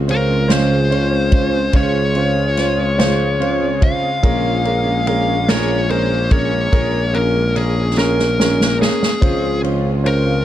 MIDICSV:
0, 0, Header, 1, 7, 480
1, 0, Start_track
1, 0, Key_signature, -5, "major"
1, 0, Tempo, 829876
1, 1006, Time_signature, 6, 3, 24, 8
1, 6043, End_track
2, 0, Start_track
2, 0, Title_t, "Lead electric guitar"
2, 0, Program_c, 0, 29
2, 64, Note_on_c, 0, 70, 75
2, 297, Note_on_c, 0, 72, 84
2, 302, Note_off_c, 0, 70, 0
2, 1017, Note_off_c, 0, 72, 0
2, 1020, Note_on_c, 0, 73, 90
2, 2217, Note_on_c, 0, 77, 115
2, 2251, Note_off_c, 0, 73, 0
2, 2928, Note_off_c, 0, 77, 0
2, 2935, Note_on_c, 0, 77, 92
2, 3176, Note_on_c, 0, 73, 90
2, 3179, Note_off_c, 0, 77, 0
2, 3416, Note_off_c, 0, 73, 0
2, 3419, Note_on_c, 0, 72, 97
2, 3654, Note_off_c, 0, 72, 0
2, 3657, Note_on_c, 0, 73, 92
2, 4133, Note_on_c, 0, 70, 74
2, 4147, Note_off_c, 0, 73, 0
2, 4375, Note_off_c, 0, 70, 0
2, 4377, Note_on_c, 0, 68, 76
2, 4596, Note_off_c, 0, 68, 0
2, 4619, Note_on_c, 0, 70, 80
2, 5070, Note_off_c, 0, 70, 0
2, 5100, Note_on_c, 0, 68, 72
2, 5550, Note_off_c, 0, 68, 0
2, 5821, Note_on_c, 0, 70, 83
2, 6043, Note_off_c, 0, 70, 0
2, 6043, End_track
3, 0, Start_track
3, 0, Title_t, "Grand piano"
3, 0, Program_c, 1, 0
3, 43, Note_on_c, 1, 61, 67
3, 45, Note_on_c, 1, 65, 57
3, 46, Note_on_c, 1, 72, 78
3, 194, Note_off_c, 1, 61, 0
3, 195, Note_off_c, 1, 65, 0
3, 195, Note_off_c, 1, 72, 0
3, 276, Note_on_c, 1, 61, 79
3, 277, Note_on_c, 1, 65, 80
3, 279, Note_on_c, 1, 72, 87
3, 431, Note_off_c, 1, 61, 0
3, 431, Note_off_c, 1, 65, 0
3, 432, Note_off_c, 1, 72, 0
3, 521, Note_on_c, 1, 61, 78
3, 525, Note_on_c, 1, 65, 62
3, 525, Note_on_c, 1, 72, 76
3, 674, Note_off_c, 1, 61, 0
3, 676, Note_off_c, 1, 65, 0
3, 676, Note_off_c, 1, 72, 0
3, 760, Note_on_c, 1, 61, 69
3, 763, Note_on_c, 1, 65, 63
3, 767, Note_on_c, 1, 72, 79
3, 913, Note_off_c, 1, 61, 0
3, 915, Note_off_c, 1, 65, 0
3, 917, Note_off_c, 1, 72, 0
3, 1002, Note_on_c, 1, 61, 84
3, 1004, Note_on_c, 1, 65, 70
3, 1007, Note_on_c, 1, 72, 90
3, 1154, Note_off_c, 1, 61, 0
3, 1156, Note_off_c, 1, 65, 0
3, 1157, Note_off_c, 1, 72, 0
3, 1245, Note_on_c, 1, 61, 72
3, 1246, Note_on_c, 1, 65, 62
3, 1250, Note_on_c, 1, 72, 77
3, 1396, Note_off_c, 1, 61, 0
3, 1397, Note_off_c, 1, 65, 0
3, 1398, Note_off_c, 1, 72, 0
3, 1489, Note_on_c, 1, 61, 70
3, 1492, Note_on_c, 1, 72, 76
3, 1493, Note_on_c, 1, 65, 69
3, 1638, Note_off_c, 1, 61, 0
3, 1640, Note_off_c, 1, 65, 0
3, 1640, Note_off_c, 1, 72, 0
3, 1722, Note_on_c, 1, 61, 79
3, 1723, Note_on_c, 1, 65, 78
3, 1726, Note_on_c, 1, 72, 96
3, 1875, Note_off_c, 1, 61, 0
3, 1876, Note_off_c, 1, 65, 0
3, 1877, Note_off_c, 1, 72, 0
3, 1967, Note_on_c, 1, 61, 71
3, 1967, Note_on_c, 1, 65, 71
3, 1969, Note_on_c, 1, 72, 87
3, 2117, Note_off_c, 1, 61, 0
3, 2117, Note_off_c, 1, 65, 0
3, 2119, Note_off_c, 1, 72, 0
3, 2202, Note_on_c, 1, 61, 68
3, 2204, Note_on_c, 1, 65, 57
3, 2207, Note_on_c, 1, 72, 72
3, 2355, Note_off_c, 1, 61, 0
3, 2356, Note_off_c, 1, 65, 0
3, 2357, Note_off_c, 1, 72, 0
3, 2446, Note_on_c, 1, 61, 85
3, 2446, Note_on_c, 1, 68, 79
3, 2448, Note_on_c, 1, 70, 90
3, 2597, Note_off_c, 1, 61, 0
3, 2597, Note_off_c, 1, 68, 0
3, 2598, Note_off_c, 1, 70, 0
3, 2686, Note_on_c, 1, 61, 68
3, 2689, Note_on_c, 1, 68, 60
3, 2693, Note_on_c, 1, 70, 74
3, 2837, Note_off_c, 1, 61, 0
3, 2839, Note_off_c, 1, 68, 0
3, 2841, Note_off_c, 1, 70, 0
3, 2931, Note_on_c, 1, 61, 66
3, 2933, Note_on_c, 1, 68, 66
3, 2935, Note_on_c, 1, 70, 83
3, 3080, Note_off_c, 1, 61, 0
3, 3081, Note_off_c, 1, 68, 0
3, 3082, Note_off_c, 1, 70, 0
3, 3170, Note_on_c, 1, 61, 82
3, 3174, Note_on_c, 1, 68, 77
3, 3175, Note_on_c, 1, 70, 99
3, 3319, Note_off_c, 1, 61, 0
3, 3321, Note_off_c, 1, 68, 0
3, 3322, Note_off_c, 1, 70, 0
3, 3409, Note_on_c, 1, 68, 69
3, 3410, Note_on_c, 1, 61, 74
3, 3413, Note_on_c, 1, 70, 79
3, 3559, Note_off_c, 1, 61, 0
3, 3559, Note_off_c, 1, 68, 0
3, 3561, Note_off_c, 1, 70, 0
3, 3648, Note_on_c, 1, 61, 68
3, 3652, Note_on_c, 1, 70, 82
3, 3653, Note_on_c, 1, 68, 64
3, 3798, Note_off_c, 1, 61, 0
3, 3800, Note_off_c, 1, 68, 0
3, 3800, Note_off_c, 1, 70, 0
3, 3886, Note_on_c, 1, 61, 78
3, 3889, Note_on_c, 1, 68, 82
3, 3891, Note_on_c, 1, 70, 98
3, 4037, Note_off_c, 1, 61, 0
3, 4039, Note_off_c, 1, 68, 0
3, 4039, Note_off_c, 1, 70, 0
3, 4126, Note_on_c, 1, 61, 64
3, 4128, Note_on_c, 1, 68, 67
3, 4131, Note_on_c, 1, 70, 74
3, 4277, Note_off_c, 1, 61, 0
3, 4278, Note_off_c, 1, 68, 0
3, 4280, Note_off_c, 1, 70, 0
3, 4369, Note_on_c, 1, 61, 64
3, 4370, Note_on_c, 1, 68, 64
3, 4373, Note_on_c, 1, 70, 78
3, 4519, Note_off_c, 1, 61, 0
3, 4519, Note_off_c, 1, 68, 0
3, 4520, Note_off_c, 1, 70, 0
3, 4612, Note_on_c, 1, 68, 84
3, 4613, Note_on_c, 1, 61, 86
3, 4614, Note_on_c, 1, 70, 89
3, 4760, Note_off_c, 1, 61, 0
3, 4760, Note_off_c, 1, 68, 0
3, 4761, Note_off_c, 1, 70, 0
3, 4855, Note_on_c, 1, 61, 76
3, 4855, Note_on_c, 1, 68, 72
3, 4856, Note_on_c, 1, 70, 78
3, 5001, Note_off_c, 1, 61, 0
3, 5001, Note_off_c, 1, 68, 0
3, 5002, Note_off_c, 1, 70, 0
3, 5086, Note_on_c, 1, 68, 61
3, 5087, Note_on_c, 1, 61, 66
3, 5088, Note_on_c, 1, 70, 78
3, 5237, Note_off_c, 1, 61, 0
3, 5237, Note_off_c, 1, 68, 0
3, 5237, Note_off_c, 1, 70, 0
3, 5329, Note_on_c, 1, 61, 75
3, 5329, Note_on_c, 1, 65, 68
3, 5330, Note_on_c, 1, 72, 87
3, 5477, Note_off_c, 1, 61, 0
3, 5478, Note_off_c, 1, 65, 0
3, 5478, Note_off_c, 1, 72, 0
3, 5569, Note_on_c, 1, 61, 68
3, 5570, Note_on_c, 1, 65, 59
3, 5572, Note_on_c, 1, 72, 65
3, 5717, Note_off_c, 1, 61, 0
3, 5718, Note_off_c, 1, 65, 0
3, 5719, Note_off_c, 1, 72, 0
3, 5804, Note_on_c, 1, 61, 74
3, 5807, Note_on_c, 1, 65, 64
3, 5809, Note_on_c, 1, 72, 83
3, 5955, Note_off_c, 1, 61, 0
3, 5956, Note_off_c, 1, 65, 0
3, 5957, Note_off_c, 1, 72, 0
3, 6043, End_track
4, 0, Start_track
4, 0, Title_t, "Steel-string acoustic guitar"
4, 0, Program_c, 2, 25
4, 0, Note_on_c, 2, 56, 40
4, 0, Note_on_c, 2, 60, 52
4, 0, Note_on_c, 2, 68, 47
4, 152, Note_off_c, 2, 68, 0
4, 159, Note_on_c, 2, 68, 47
4, 161, Note_off_c, 2, 60, 0
4, 167, Note_off_c, 2, 56, 0
4, 168, Note_on_c, 2, 60, 46
4, 174, Note_on_c, 2, 56, 37
4, 280, Note_off_c, 2, 56, 0
4, 281, Note_on_c, 2, 49, 76
4, 282, Note_off_c, 2, 68, 0
4, 283, Note_off_c, 2, 60, 0
4, 286, Note_on_c, 2, 53, 73
4, 287, Note_on_c, 2, 56, 81
4, 289, Note_on_c, 2, 68, 83
4, 290, Note_on_c, 2, 60, 82
4, 510, Note_off_c, 2, 53, 0
4, 516, Note_off_c, 2, 56, 0
4, 517, Note_on_c, 2, 53, 61
4, 519, Note_off_c, 2, 60, 0
4, 523, Note_off_c, 2, 49, 0
4, 523, Note_on_c, 2, 56, 56
4, 524, Note_off_c, 2, 68, 0
4, 526, Note_on_c, 2, 60, 64
4, 531, Note_on_c, 2, 68, 66
4, 633, Note_off_c, 2, 68, 0
4, 640, Note_off_c, 2, 60, 0
4, 640, Note_on_c, 2, 68, 48
4, 642, Note_off_c, 2, 53, 0
4, 645, Note_off_c, 2, 56, 0
4, 647, Note_on_c, 2, 60, 46
4, 652, Note_on_c, 2, 56, 41
4, 875, Note_off_c, 2, 68, 0
4, 882, Note_on_c, 2, 68, 53
4, 883, Note_off_c, 2, 60, 0
4, 890, Note_off_c, 2, 56, 0
4, 890, Note_on_c, 2, 60, 48
4, 896, Note_on_c, 2, 56, 46
4, 1002, Note_off_c, 2, 56, 0
4, 1004, Note_off_c, 2, 68, 0
4, 1004, Note_on_c, 2, 49, 75
4, 1008, Note_off_c, 2, 60, 0
4, 1008, Note_on_c, 2, 53, 81
4, 1009, Note_on_c, 2, 56, 83
4, 1014, Note_on_c, 2, 68, 79
4, 1236, Note_off_c, 2, 53, 0
4, 1242, Note_off_c, 2, 56, 0
4, 1243, Note_on_c, 2, 53, 64
4, 1246, Note_off_c, 2, 49, 0
4, 1249, Note_on_c, 2, 56, 66
4, 1251, Note_off_c, 2, 68, 0
4, 1253, Note_on_c, 2, 60, 58
4, 1258, Note_on_c, 2, 68, 67
4, 1355, Note_off_c, 2, 68, 0
4, 1362, Note_on_c, 2, 68, 51
4, 1365, Note_off_c, 2, 53, 0
4, 1368, Note_off_c, 2, 56, 0
4, 1370, Note_off_c, 2, 60, 0
4, 1376, Note_on_c, 2, 56, 42
4, 1596, Note_off_c, 2, 68, 0
4, 1603, Note_on_c, 2, 68, 59
4, 1609, Note_off_c, 2, 56, 0
4, 1610, Note_on_c, 2, 60, 46
4, 1616, Note_on_c, 2, 56, 47
4, 1723, Note_off_c, 2, 56, 0
4, 1725, Note_off_c, 2, 68, 0
4, 1725, Note_on_c, 2, 49, 84
4, 1727, Note_on_c, 2, 53, 92
4, 1729, Note_off_c, 2, 60, 0
4, 1730, Note_on_c, 2, 56, 91
4, 1735, Note_on_c, 2, 68, 82
4, 1951, Note_off_c, 2, 53, 0
4, 1956, Note_off_c, 2, 56, 0
4, 1958, Note_on_c, 2, 53, 71
4, 1963, Note_on_c, 2, 56, 66
4, 1965, Note_off_c, 2, 68, 0
4, 1966, Note_on_c, 2, 60, 68
4, 1967, Note_off_c, 2, 49, 0
4, 1972, Note_on_c, 2, 68, 75
4, 2075, Note_off_c, 2, 68, 0
4, 2082, Note_on_c, 2, 68, 52
4, 2083, Note_off_c, 2, 53, 0
4, 2083, Note_off_c, 2, 60, 0
4, 2086, Note_off_c, 2, 56, 0
4, 2090, Note_on_c, 2, 60, 53
4, 2095, Note_on_c, 2, 56, 44
4, 2317, Note_off_c, 2, 68, 0
4, 2324, Note_off_c, 2, 60, 0
4, 2324, Note_on_c, 2, 68, 54
4, 2330, Note_off_c, 2, 56, 0
4, 2331, Note_on_c, 2, 60, 54
4, 2337, Note_on_c, 2, 56, 44
4, 2444, Note_off_c, 2, 56, 0
4, 2446, Note_off_c, 2, 68, 0
4, 2446, Note_on_c, 2, 46, 72
4, 2448, Note_on_c, 2, 53, 83
4, 2450, Note_off_c, 2, 60, 0
4, 2451, Note_on_c, 2, 56, 89
4, 2453, Note_on_c, 2, 61, 75
4, 2455, Note_on_c, 2, 68, 83
4, 2678, Note_off_c, 2, 53, 0
4, 2684, Note_off_c, 2, 56, 0
4, 2685, Note_on_c, 2, 53, 57
4, 2686, Note_off_c, 2, 61, 0
4, 2687, Note_off_c, 2, 46, 0
4, 2691, Note_on_c, 2, 56, 57
4, 2692, Note_off_c, 2, 68, 0
4, 2693, Note_on_c, 2, 61, 66
4, 2698, Note_on_c, 2, 68, 62
4, 2800, Note_off_c, 2, 68, 0
4, 2807, Note_off_c, 2, 53, 0
4, 2807, Note_on_c, 2, 68, 57
4, 2809, Note_off_c, 2, 61, 0
4, 2810, Note_off_c, 2, 56, 0
4, 2816, Note_on_c, 2, 61, 53
4, 2820, Note_on_c, 2, 56, 47
4, 3042, Note_off_c, 2, 68, 0
4, 3049, Note_on_c, 2, 68, 47
4, 3051, Note_off_c, 2, 61, 0
4, 3054, Note_off_c, 2, 56, 0
4, 3058, Note_on_c, 2, 61, 48
4, 3064, Note_on_c, 2, 56, 49
4, 3168, Note_off_c, 2, 56, 0
4, 3169, Note_off_c, 2, 61, 0
4, 3169, Note_off_c, 2, 68, 0
4, 3169, Note_on_c, 2, 46, 67
4, 3173, Note_on_c, 2, 53, 85
4, 3175, Note_on_c, 2, 56, 83
4, 3176, Note_on_c, 2, 61, 84
4, 3178, Note_on_c, 2, 68, 88
4, 3401, Note_off_c, 2, 53, 0
4, 3407, Note_off_c, 2, 56, 0
4, 3408, Note_on_c, 2, 53, 57
4, 3409, Note_off_c, 2, 46, 0
4, 3413, Note_off_c, 2, 61, 0
4, 3414, Note_off_c, 2, 68, 0
4, 3414, Note_on_c, 2, 56, 61
4, 3419, Note_on_c, 2, 61, 70
4, 3423, Note_on_c, 2, 68, 65
4, 3523, Note_off_c, 2, 68, 0
4, 3528, Note_off_c, 2, 53, 0
4, 3528, Note_off_c, 2, 61, 0
4, 3530, Note_on_c, 2, 68, 49
4, 3532, Note_off_c, 2, 56, 0
4, 3535, Note_on_c, 2, 61, 50
4, 3542, Note_on_c, 2, 56, 42
4, 3760, Note_off_c, 2, 68, 0
4, 3767, Note_on_c, 2, 68, 56
4, 3769, Note_off_c, 2, 61, 0
4, 3773, Note_off_c, 2, 56, 0
4, 3776, Note_on_c, 2, 61, 50
4, 3780, Note_on_c, 2, 56, 47
4, 3884, Note_off_c, 2, 56, 0
4, 3886, Note_off_c, 2, 61, 0
4, 3886, Note_on_c, 2, 46, 73
4, 3888, Note_off_c, 2, 68, 0
4, 3888, Note_on_c, 2, 53, 75
4, 3891, Note_on_c, 2, 56, 77
4, 3893, Note_on_c, 2, 61, 73
4, 3896, Note_on_c, 2, 68, 90
4, 4119, Note_off_c, 2, 53, 0
4, 4126, Note_off_c, 2, 56, 0
4, 4126, Note_on_c, 2, 53, 54
4, 4128, Note_off_c, 2, 46, 0
4, 4131, Note_off_c, 2, 61, 0
4, 4132, Note_off_c, 2, 68, 0
4, 4133, Note_on_c, 2, 56, 56
4, 4137, Note_on_c, 2, 61, 60
4, 4141, Note_on_c, 2, 68, 64
4, 4242, Note_off_c, 2, 68, 0
4, 4247, Note_off_c, 2, 53, 0
4, 4249, Note_off_c, 2, 61, 0
4, 4249, Note_on_c, 2, 68, 51
4, 4251, Note_off_c, 2, 56, 0
4, 4256, Note_on_c, 2, 61, 50
4, 4262, Note_on_c, 2, 56, 39
4, 4481, Note_off_c, 2, 68, 0
4, 4488, Note_off_c, 2, 61, 0
4, 4488, Note_on_c, 2, 68, 50
4, 4495, Note_off_c, 2, 56, 0
4, 4495, Note_on_c, 2, 61, 49
4, 4502, Note_on_c, 2, 56, 42
4, 4605, Note_off_c, 2, 56, 0
4, 4607, Note_off_c, 2, 61, 0
4, 4607, Note_on_c, 2, 46, 78
4, 4608, Note_off_c, 2, 68, 0
4, 4609, Note_on_c, 2, 53, 77
4, 4612, Note_on_c, 2, 56, 70
4, 4614, Note_on_c, 2, 61, 81
4, 4615, Note_on_c, 2, 68, 70
4, 4843, Note_off_c, 2, 53, 0
4, 4847, Note_off_c, 2, 56, 0
4, 4848, Note_off_c, 2, 46, 0
4, 4850, Note_on_c, 2, 53, 58
4, 4851, Note_off_c, 2, 61, 0
4, 4851, Note_off_c, 2, 68, 0
4, 4854, Note_on_c, 2, 56, 59
4, 4860, Note_on_c, 2, 61, 59
4, 4862, Note_on_c, 2, 68, 63
4, 4961, Note_off_c, 2, 68, 0
4, 4968, Note_on_c, 2, 68, 49
4, 4969, Note_off_c, 2, 53, 0
4, 4969, Note_off_c, 2, 61, 0
4, 4971, Note_off_c, 2, 56, 0
4, 4976, Note_on_c, 2, 61, 44
4, 4981, Note_on_c, 2, 56, 40
4, 5202, Note_off_c, 2, 68, 0
4, 5209, Note_on_c, 2, 68, 53
4, 5210, Note_off_c, 2, 61, 0
4, 5214, Note_off_c, 2, 56, 0
4, 5217, Note_on_c, 2, 61, 50
4, 5223, Note_on_c, 2, 56, 46
4, 5326, Note_off_c, 2, 56, 0
4, 5328, Note_off_c, 2, 68, 0
4, 5330, Note_on_c, 2, 49, 69
4, 5330, Note_on_c, 2, 53, 68
4, 5332, Note_off_c, 2, 61, 0
4, 5333, Note_on_c, 2, 56, 72
4, 5336, Note_on_c, 2, 60, 73
4, 5337, Note_on_c, 2, 65, 75
4, 5563, Note_off_c, 2, 53, 0
4, 5568, Note_off_c, 2, 49, 0
4, 5568, Note_off_c, 2, 56, 0
4, 5570, Note_on_c, 2, 53, 63
4, 5571, Note_off_c, 2, 60, 0
4, 5572, Note_off_c, 2, 65, 0
4, 5575, Note_on_c, 2, 56, 68
4, 5578, Note_on_c, 2, 60, 63
4, 5582, Note_on_c, 2, 65, 62
4, 5687, Note_off_c, 2, 65, 0
4, 5688, Note_off_c, 2, 53, 0
4, 5691, Note_off_c, 2, 56, 0
4, 5692, Note_off_c, 2, 60, 0
4, 5694, Note_on_c, 2, 65, 49
4, 5701, Note_on_c, 2, 60, 46
4, 5706, Note_on_c, 2, 56, 41
4, 5925, Note_off_c, 2, 65, 0
4, 5932, Note_off_c, 2, 60, 0
4, 5932, Note_on_c, 2, 65, 53
4, 5936, Note_off_c, 2, 56, 0
4, 5939, Note_on_c, 2, 60, 43
4, 5945, Note_on_c, 2, 56, 41
4, 6043, Note_off_c, 2, 56, 0
4, 6043, Note_off_c, 2, 60, 0
4, 6043, Note_off_c, 2, 65, 0
4, 6043, End_track
5, 0, Start_track
5, 0, Title_t, "Analog synth pad"
5, 0, Program_c, 3, 89
5, 0, Note_on_c, 3, 49, 84
5, 0, Note_on_c, 3, 56, 73
5, 0, Note_on_c, 3, 65, 96
5, 2429, Note_off_c, 3, 65, 0
5, 2430, Note_off_c, 3, 49, 0
5, 2448, Note_on_c, 3, 58, 75
5, 2451, Note_on_c, 3, 61, 86
5, 5304, Note_off_c, 3, 58, 0
5, 5305, Note_off_c, 3, 61, 0
5, 5307, Note_off_c, 3, 56, 0
5, 5339, Note_on_c, 3, 49, 81
5, 5339, Note_on_c, 3, 65, 81
5, 5340, Note_on_c, 3, 56, 76
5, 6043, Note_off_c, 3, 49, 0
5, 6043, Note_off_c, 3, 56, 0
5, 6043, Note_off_c, 3, 65, 0
5, 6043, End_track
6, 0, Start_track
6, 0, Title_t, "Tuba"
6, 0, Program_c, 4, 58
6, 0, Note_on_c, 4, 37, 93
6, 983, Note_off_c, 4, 37, 0
6, 1003, Note_on_c, 4, 37, 99
6, 2268, Note_off_c, 4, 37, 0
6, 2448, Note_on_c, 4, 34, 92
6, 3865, Note_off_c, 4, 34, 0
6, 3891, Note_on_c, 4, 34, 105
6, 5150, Note_off_c, 4, 34, 0
6, 5333, Note_on_c, 4, 37, 102
6, 6043, Note_off_c, 4, 37, 0
6, 6043, End_track
7, 0, Start_track
7, 0, Title_t, "Drums"
7, 51, Note_on_c, 9, 51, 56
7, 109, Note_off_c, 9, 51, 0
7, 288, Note_on_c, 9, 38, 114
7, 290, Note_on_c, 9, 51, 68
7, 346, Note_off_c, 9, 38, 0
7, 348, Note_off_c, 9, 51, 0
7, 532, Note_on_c, 9, 51, 42
7, 590, Note_off_c, 9, 51, 0
7, 762, Note_on_c, 9, 51, 48
7, 765, Note_on_c, 9, 36, 98
7, 820, Note_off_c, 9, 51, 0
7, 823, Note_off_c, 9, 36, 0
7, 1001, Note_on_c, 9, 51, 67
7, 1004, Note_on_c, 9, 36, 87
7, 1059, Note_off_c, 9, 51, 0
7, 1062, Note_off_c, 9, 36, 0
7, 1243, Note_on_c, 9, 51, 36
7, 1301, Note_off_c, 9, 51, 0
7, 1488, Note_on_c, 9, 51, 56
7, 1489, Note_on_c, 9, 38, 35
7, 1545, Note_off_c, 9, 51, 0
7, 1547, Note_off_c, 9, 38, 0
7, 1731, Note_on_c, 9, 38, 107
7, 1733, Note_on_c, 9, 51, 64
7, 1789, Note_off_c, 9, 38, 0
7, 1791, Note_off_c, 9, 51, 0
7, 1976, Note_on_c, 9, 51, 43
7, 2034, Note_off_c, 9, 51, 0
7, 2211, Note_on_c, 9, 36, 100
7, 2211, Note_on_c, 9, 51, 52
7, 2268, Note_off_c, 9, 36, 0
7, 2269, Note_off_c, 9, 51, 0
7, 2450, Note_on_c, 9, 36, 94
7, 2451, Note_on_c, 9, 51, 62
7, 2507, Note_off_c, 9, 36, 0
7, 2509, Note_off_c, 9, 51, 0
7, 2691, Note_on_c, 9, 51, 45
7, 2749, Note_off_c, 9, 51, 0
7, 2933, Note_on_c, 9, 51, 54
7, 2990, Note_off_c, 9, 51, 0
7, 3172, Note_on_c, 9, 38, 119
7, 3174, Note_on_c, 9, 51, 74
7, 3230, Note_off_c, 9, 38, 0
7, 3232, Note_off_c, 9, 51, 0
7, 3414, Note_on_c, 9, 51, 42
7, 3472, Note_off_c, 9, 51, 0
7, 3649, Note_on_c, 9, 51, 56
7, 3652, Note_on_c, 9, 36, 94
7, 3707, Note_off_c, 9, 51, 0
7, 3709, Note_off_c, 9, 36, 0
7, 3891, Note_on_c, 9, 36, 96
7, 3891, Note_on_c, 9, 51, 63
7, 3949, Note_off_c, 9, 36, 0
7, 3949, Note_off_c, 9, 51, 0
7, 4132, Note_on_c, 9, 51, 43
7, 4190, Note_off_c, 9, 51, 0
7, 4373, Note_on_c, 9, 51, 61
7, 4430, Note_off_c, 9, 51, 0
7, 4615, Note_on_c, 9, 38, 57
7, 4673, Note_off_c, 9, 38, 0
7, 4738, Note_on_c, 9, 38, 57
7, 4796, Note_off_c, 9, 38, 0
7, 4858, Note_on_c, 9, 38, 73
7, 4915, Note_off_c, 9, 38, 0
7, 4980, Note_on_c, 9, 38, 82
7, 5037, Note_off_c, 9, 38, 0
7, 5101, Note_on_c, 9, 38, 98
7, 5159, Note_off_c, 9, 38, 0
7, 5221, Note_on_c, 9, 38, 85
7, 5279, Note_off_c, 9, 38, 0
7, 5334, Note_on_c, 9, 36, 98
7, 5339, Note_on_c, 9, 51, 61
7, 5392, Note_off_c, 9, 36, 0
7, 5397, Note_off_c, 9, 51, 0
7, 5578, Note_on_c, 9, 51, 39
7, 5636, Note_off_c, 9, 51, 0
7, 5819, Note_on_c, 9, 51, 56
7, 5876, Note_off_c, 9, 51, 0
7, 6043, End_track
0, 0, End_of_file